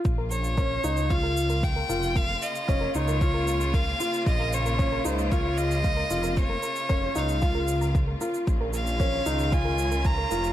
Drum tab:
SH |x-xxx-xxx-xxx-xx|x-xxx-xxx-xxx-xx|x-xxx-xxx-xxx-xx|x-xxx-xxx-xxx-xx|
BD |o---o---o---o---|o---o---o---o---|o---o---o---o---|o---o---o---o---|

SH |x-xxx-xxx-xxx-xx|
BD |o---o---o---o---|